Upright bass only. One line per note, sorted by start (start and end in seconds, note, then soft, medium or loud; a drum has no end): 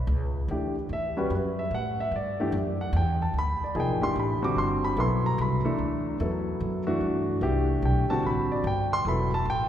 0.07 0.48 C#2 loud
0.48 0.89 D2 medium
0.89 1.29 E2 medium
1.30 1.70 F#2 medium
1.71 2.11 A2 medium
2.11 2.52 G2 medium
2.52 2.92 F#2 medium
2.93 3.33 E2 loud
3.34 3.59 D2 medium
3.61 muted upright bass stroke soft
3.75 3.88 C2 medium
3.88 4.00 A1 medium
4.01 4.15 G1 medium
4.16 4.55 A1 medium
4.56 4.96 G1 medium
4.97 5.37 B1 medium
5.38 5.63 C2 loud
5.65 muted upright bass stroke soft
5.78 6.19 D2 medium
6.20 6.60 E2 loud
6.60 7.00 F#2 medium
7.01 7.40 G2 medium
7.41 7.81 C2 medium
7.82 8.07 B1 medium
8.23 8.63 A1 medium
8.64 9.04 G1 medium
9.05 9.45 E1 medium
9.45 9.69 A1 medium